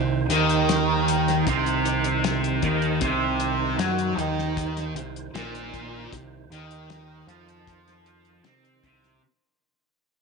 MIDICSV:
0, 0, Header, 1, 5, 480
1, 0, Start_track
1, 0, Key_signature, -3, "minor"
1, 0, Tempo, 775194
1, 1868, Time_signature, 4, 2, 24, 8
1, 6325, End_track
2, 0, Start_track
2, 0, Title_t, "Tonewheel organ"
2, 0, Program_c, 0, 16
2, 0, Note_on_c, 0, 51, 69
2, 0, Note_on_c, 0, 63, 69
2, 0, Note_on_c, 0, 72, 80
2, 5676, Note_off_c, 0, 51, 0
2, 5676, Note_off_c, 0, 72, 0
2, 5677, Note_off_c, 0, 63, 0
2, 6325, End_track
3, 0, Start_track
3, 0, Title_t, "Distorted electric guitar"
3, 0, Program_c, 1, 30
3, 0, Note_on_c, 1, 48, 79
3, 136, Note_off_c, 1, 48, 0
3, 185, Note_on_c, 1, 51, 91
3, 899, Note_off_c, 1, 51, 0
3, 909, Note_on_c, 1, 48, 110
3, 1621, Note_off_c, 1, 48, 0
3, 1630, Note_on_c, 1, 51, 95
3, 1862, Note_off_c, 1, 51, 0
3, 1866, Note_on_c, 1, 48, 110
3, 2340, Note_off_c, 1, 48, 0
3, 2346, Note_on_c, 1, 54, 104
3, 2592, Note_off_c, 1, 54, 0
3, 2592, Note_on_c, 1, 51, 108
3, 3063, Note_off_c, 1, 51, 0
3, 3072, Note_on_c, 1, 48, 80
3, 3262, Note_off_c, 1, 48, 0
3, 3309, Note_on_c, 1, 46, 112
3, 3781, Note_off_c, 1, 46, 0
3, 3797, Note_on_c, 1, 48, 73
3, 3984, Note_off_c, 1, 48, 0
3, 4035, Note_on_c, 1, 51, 99
3, 4504, Note_off_c, 1, 51, 0
3, 4507, Note_on_c, 1, 53, 101
3, 5220, Note_off_c, 1, 53, 0
3, 5226, Note_on_c, 1, 60, 108
3, 5460, Note_off_c, 1, 60, 0
3, 5471, Note_on_c, 1, 48, 95
3, 5702, Note_off_c, 1, 48, 0
3, 6325, End_track
4, 0, Start_track
4, 0, Title_t, "Fingered electric bass"
4, 0, Program_c, 2, 33
4, 0, Note_on_c, 2, 36, 89
4, 167, Note_off_c, 2, 36, 0
4, 180, Note_on_c, 2, 39, 95
4, 879, Note_off_c, 2, 39, 0
4, 910, Note_on_c, 2, 36, 97
4, 1605, Note_off_c, 2, 36, 0
4, 1627, Note_on_c, 2, 39, 92
4, 1850, Note_off_c, 2, 39, 0
4, 1867, Note_on_c, 2, 36, 95
4, 2323, Note_off_c, 2, 36, 0
4, 2341, Note_on_c, 2, 42, 94
4, 2567, Note_off_c, 2, 42, 0
4, 2581, Note_on_c, 2, 39, 98
4, 3040, Note_off_c, 2, 39, 0
4, 3058, Note_on_c, 2, 36, 71
4, 3286, Note_off_c, 2, 36, 0
4, 3304, Note_on_c, 2, 34, 88
4, 3761, Note_off_c, 2, 34, 0
4, 3793, Note_on_c, 2, 36, 83
4, 4014, Note_off_c, 2, 36, 0
4, 4026, Note_on_c, 2, 39, 92
4, 4482, Note_off_c, 2, 39, 0
4, 4503, Note_on_c, 2, 41, 101
4, 5200, Note_off_c, 2, 41, 0
4, 5225, Note_on_c, 2, 48, 83
4, 5449, Note_off_c, 2, 48, 0
4, 5469, Note_on_c, 2, 36, 91
4, 5691, Note_off_c, 2, 36, 0
4, 6325, End_track
5, 0, Start_track
5, 0, Title_t, "Drums"
5, 186, Note_on_c, 9, 42, 78
5, 248, Note_off_c, 9, 42, 0
5, 306, Note_on_c, 9, 42, 45
5, 368, Note_off_c, 9, 42, 0
5, 428, Note_on_c, 9, 42, 90
5, 430, Note_on_c, 9, 38, 102
5, 490, Note_off_c, 9, 42, 0
5, 492, Note_off_c, 9, 38, 0
5, 670, Note_on_c, 9, 42, 70
5, 732, Note_off_c, 9, 42, 0
5, 794, Note_on_c, 9, 42, 42
5, 797, Note_on_c, 9, 38, 35
5, 856, Note_off_c, 9, 42, 0
5, 859, Note_off_c, 9, 38, 0
5, 908, Note_on_c, 9, 42, 94
5, 909, Note_on_c, 9, 36, 107
5, 970, Note_off_c, 9, 42, 0
5, 971, Note_off_c, 9, 36, 0
5, 1030, Note_on_c, 9, 42, 43
5, 1092, Note_off_c, 9, 42, 0
5, 1148, Note_on_c, 9, 42, 74
5, 1210, Note_off_c, 9, 42, 0
5, 1265, Note_on_c, 9, 42, 45
5, 1327, Note_off_c, 9, 42, 0
5, 1388, Note_on_c, 9, 42, 100
5, 1391, Note_on_c, 9, 38, 118
5, 1450, Note_off_c, 9, 42, 0
5, 1453, Note_off_c, 9, 38, 0
5, 1511, Note_on_c, 9, 42, 47
5, 1573, Note_off_c, 9, 42, 0
5, 1625, Note_on_c, 9, 42, 65
5, 1628, Note_on_c, 9, 36, 89
5, 1687, Note_off_c, 9, 42, 0
5, 1690, Note_off_c, 9, 36, 0
5, 1745, Note_on_c, 9, 42, 40
5, 1807, Note_off_c, 9, 42, 0
5, 1864, Note_on_c, 9, 42, 99
5, 1868, Note_on_c, 9, 36, 113
5, 1926, Note_off_c, 9, 42, 0
5, 1930, Note_off_c, 9, 36, 0
5, 2104, Note_on_c, 9, 42, 74
5, 2166, Note_off_c, 9, 42, 0
5, 2348, Note_on_c, 9, 42, 91
5, 2350, Note_on_c, 9, 38, 117
5, 2410, Note_off_c, 9, 42, 0
5, 2412, Note_off_c, 9, 38, 0
5, 2467, Note_on_c, 9, 42, 45
5, 2529, Note_off_c, 9, 42, 0
5, 2592, Note_on_c, 9, 42, 71
5, 2654, Note_off_c, 9, 42, 0
5, 2716, Note_on_c, 9, 38, 33
5, 2778, Note_off_c, 9, 38, 0
5, 2831, Note_on_c, 9, 36, 118
5, 2833, Note_on_c, 9, 42, 98
5, 2893, Note_off_c, 9, 36, 0
5, 2895, Note_off_c, 9, 42, 0
5, 2953, Note_on_c, 9, 42, 51
5, 2955, Note_on_c, 9, 38, 31
5, 3015, Note_off_c, 9, 42, 0
5, 3017, Note_off_c, 9, 38, 0
5, 3072, Note_on_c, 9, 42, 84
5, 3134, Note_off_c, 9, 42, 0
5, 3196, Note_on_c, 9, 42, 47
5, 3258, Note_off_c, 9, 42, 0
5, 3314, Note_on_c, 9, 42, 104
5, 3317, Note_on_c, 9, 38, 122
5, 3376, Note_off_c, 9, 42, 0
5, 3379, Note_off_c, 9, 38, 0
5, 3435, Note_on_c, 9, 42, 50
5, 3497, Note_off_c, 9, 42, 0
5, 3552, Note_on_c, 9, 36, 76
5, 3553, Note_on_c, 9, 42, 72
5, 3614, Note_off_c, 9, 36, 0
5, 3615, Note_off_c, 9, 42, 0
5, 3793, Note_on_c, 9, 36, 110
5, 3795, Note_on_c, 9, 42, 94
5, 3855, Note_off_c, 9, 36, 0
5, 3857, Note_off_c, 9, 42, 0
5, 4036, Note_on_c, 9, 42, 75
5, 4098, Note_off_c, 9, 42, 0
5, 4153, Note_on_c, 9, 42, 46
5, 4215, Note_off_c, 9, 42, 0
5, 4272, Note_on_c, 9, 42, 87
5, 4274, Note_on_c, 9, 38, 113
5, 4334, Note_off_c, 9, 42, 0
5, 4336, Note_off_c, 9, 38, 0
5, 4511, Note_on_c, 9, 42, 63
5, 4573, Note_off_c, 9, 42, 0
5, 4635, Note_on_c, 9, 42, 43
5, 4697, Note_off_c, 9, 42, 0
5, 4752, Note_on_c, 9, 36, 98
5, 4755, Note_on_c, 9, 42, 93
5, 4814, Note_off_c, 9, 36, 0
5, 4817, Note_off_c, 9, 42, 0
5, 4877, Note_on_c, 9, 42, 43
5, 4880, Note_on_c, 9, 38, 33
5, 4939, Note_off_c, 9, 42, 0
5, 4942, Note_off_c, 9, 38, 0
5, 4991, Note_on_c, 9, 42, 73
5, 5053, Note_off_c, 9, 42, 0
5, 5108, Note_on_c, 9, 42, 42
5, 5170, Note_off_c, 9, 42, 0
5, 5228, Note_on_c, 9, 42, 102
5, 5231, Note_on_c, 9, 38, 127
5, 5290, Note_off_c, 9, 42, 0
5, 5293, Note_off_c, 9, 38, 0
5, 5354, Note_on_c, 9, 42, 45
5, 5416, Note_off_c, 9, 42, 0
5, 5471, Note_on_c, 9, 36, 85
5, 5474, Note_on_c, 9, 42, 71
5, 5533, Note_off_c, 9, 36, 0
5, 5536, Note_off_c, 9, 42, 0
5, 5598, Note_on_c, 9, 42, 42
5, 5600, Note_on_c, 9, 38, 30
5, 5660, Note_off_c, 9, 42, 0
5, 5662, Note_off_c, 9, 38, 0
5, 6325, End_track
0, 0, End_of_file